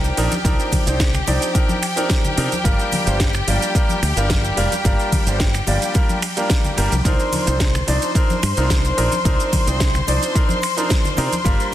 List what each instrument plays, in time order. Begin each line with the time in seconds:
Already playing: grand piano F3 C4 D4 D#4 A#4, string section G4 G5
0.04 closed hi-hat, cabasa, shaker
0.17 fingered electric bass A#1, grand piano F3 C4 D4 D#4 A#4, open hi-hat, ride, cabasa
0.32 closed hi-hat, muted conga, high conga, cabasa, shaker
0.44 fingered electric bass C2, grand piano F3 C4 D4 D#4 A#4, kick, closed hi-hat, ride, cabasa, shaker
0.59 closed hi-hat, cabasa, shaker
0.72 kick, open hi-hat, ride, high conga, low conga, cabasa
0.86 fingered electric bass C2, grand piano F3 C4 D4 D#4 C5, closed hi-hat, cabasa, shaker
1.00 kick, snare, closed hi-hat, ride, cabasa, shaker
1.14 finger snap, closed hi-hat, low conga, cabasa, shaker
1.27 fingered electric bass C2, grand piano F3 C4 D4 D#4 D5, open hi-hat, ride, high conga, cabasa
1.42 closed hi-hat, cabasa, shaker
1.54 grand piano F3 C4 D4 D#4 A#4, kick, closed hi-hat, ride, muted conga, cabasa, shaker
1.69 closed hi-hat, high conga, cabasa, shaker
1.82 finger snap, open hi-hat, ride, cabasa
1.96 grand piano F3 C4 D4 D#4 A#4, closed hi-hat, muted conga, cabasa, shaker
2.10 kick, snare, closed hi-hat, ride, high conga, cabasa, shaker
2.24 closed hi-hat, low conga, cabasa, shaker
2.37 fingered electric bass C3, grand piano F3 C4 D4 D#4 A#4, open hi-hat, ride, muted conga, cabasa
2.52 closed hi-hat, high conga, cabasa, shaker
2.64 fingered electric bass G1, grand piano G3 A#3 D4 F4 A#4, kick, closed hi-hat, ride, cabasa, shaker
2.79 closed hi-hat, cabasa, shaker
2.92 open hi-hat, ride, high conga, low conga, cabasa
3.06 fingered electric bass G1, grand piano G3 A#3 D4 F4 C5, closed hi-hat, cabasa, shaker
3.20 kick, snare, closed hi-hat, ride, cabasa, shaker
3.33 finger snap, closed hi-hat, low conga, cabasa, shaker
3.47 fingered electric bass G1, grand piano G3 A#3 D4 F4 D5, open hi-hat, ride, high conga, cabasa
3.62 closed hi-hat, cabasa, shaker
3.75 grand piano G3 A#3 D4 F4 A#4, kick, closed hi-hat, ride, cabasa, shaker
3.89 closed hi-hat, high conga, cabasa, shaker
4.02 fingered electric bass D2, finger snap, open hi-hat, ride, cabasa
4.16 fingered electric bass G1, grand piano G3 A#3 D4 F4 A#4, closed hi-hat, cabasa, shaker
4.30 kick, snare, closed hi-hat, ride, high conga, cabasa, shaker
4.44 closed hi-hat, cabasa, shaker
4.57 fingered electric bass F1, grand piano G3 A#3 D4 F4 A#4, open hi-hat, ride, cabasa
4.72 closed hi-hat, muted conga, high conga, cabasa, shaker
4.84 fingered electric bass G1, grand piano G3 A#3 D4 F4 A#4, kick, closed hi-hat, ride, cabasa, shaker
4.99 closed hi-hat, cabasa, shaker
5.12 kick, open hi-hat, ride, high conga, low conga, cabasa
5.26 fingered electric bass G1, grand piano G3 A#3 D4 F4 C5, closed hi-hat, cabasa, shaker
5.40 kick, snare, closed hi-hat, ride, cabasa, shaker
5.54 finger snap, closed hi-hat, low conga, cabasa, shaker
5.67 fingered electric bass G1, grand piano G3 A#3 D4 F4 D5, open hi-hat, ride, high conga, cabasa
5.82 closed hi-hat, cabasa, shaker
5.94 grand piano G3 A#3 D4 F4 A#4, kick, closed hi-hat, ride, muted conga, cabasa, shaker
6.09 closed hi-hat, high conga, cabasa, shaker
6.22 finger snap, open hi-hat, ride, cabasa
6.37 grand piano G3 A#3 D4 F4 A#4, closed hi-hat, muted conga, cabasa, shaker
6.50 kick, snare, closed hi-hat, ride, high conga, cabasa, shaker
6.64 closed hi-hat, low conga, cabasa, shaker
6.77 fingered electric bass G1, grand piano G3 A#3 D4 F4 A#4, open hi-hat, ride, muted conga, cabasa
6.92 fingered electric bass C2, closed hi-hat, high conga, cabasa, shaker
7.05 fingered electric bass C2, grand piano F3 C4 D4 D#4 A#4, string section C5 C6, kick, closed hi-hat, ride, cabasa, shaker
7.20 closed hi-hat, cabasa, shaker
7.32 open hi-hat, ride, high conga, low conga, cabasa
7.46 fingered electric bass C2, grand piano F3 C4 D4 D#4 C5, closed hi-hat, cabasa, shaker
7.60 kick, snare, closed hi-hat, ride, cabasa, shaker
7.75 finger snap, closed hi-hat, low conga, cabasa, shaker
7.87 fingered electric bass C2, grand piano F3 C4 D4 D#4 D5, open hi-hat, ride, high conga, cabasa
8.02 closed hi-hat, cabasa, shaker
8.15 grand piano F3 C4 D4 D#4 A#4, kick, closed hi-hat, ride, cabasa, shaker
8.30 closed hi-hat, high conga, cabasa, shaker
8.43 fingered electric bass G2, finger snap, open hi-hat, ride, cabasa
8.57 fingered electric bass C2, grand piano F3 C4 D4 D#4 A#4, closed hi-hat, cabasa, shaker
8.70 kick, snare, closed hi-hat, ride, high conga, cabasa, shaker
8.85 closed hi-hat, cabasa, shaker
8.97 fingered electric bass A#1, grand piano F3 C4 D4 D#4 A#4, open hi-hat, ride, cabasa
9.12 closed hi-hat, muted conga, high conga, cabasa, shaker
9.25 fingered electric bass C2, grand piano F3 C4 D4 D#4 A#4, kick, closed hi-hat, ride, cabasa, shaker
9.40 closed hi-hat, cabasa, shaker
9.53 kick, open hi-hat, ride, high conga, low conga, cabasa
9.67 fingered electric bass C2, grand piano F3 C4 D4 D#4 C5, closed hi-hat, cabasa, shaker
9.80 kick, snare, closed hi-hat, ride, cabasa, shaker
9.95 finger snap, closed hi-hat, low conga, cabasa, shaker
10.07 fingered electric bass C2, grand piano F3 C4 D4 D#4 D5, open hi-hat, ride, high conga, cabasa
10.22 closed hi-hat, cabasa, shaker
10.35 grand piano F3 C4 D4 D#4 A#4, kick, closed hi-hat, ride, muted conga, cabasa, shaker
10.49 closed hi-hat, high conga, cabasa, shaker
10.62 finger snap, open hi-hat, ride, cabasa
10.77 grand piano F3 C4 D4 D#4 A#4, closed hi-hat, muted conga, cabasa, shaker
10.89 kick, snare, closed hi-hat, ride, high conga, cabasa, shaker
11.04 closed hi-hat, low conga, cabasa, shaker
11.17 fingered electric bass C3, grand piano F3 C4 D4 D#4 A#4, open hi-hat, ride, muted conga, cabasa
11.32 closed hi-hat, high conga, cabasa, shaker
11.44 fingered electric bass G1, grand piano G3 A#3 D4 F4 A#4, kick, closed hi-hat, ride, cabasa, shaker
11.60 closed hi-hat, cabasa, shaker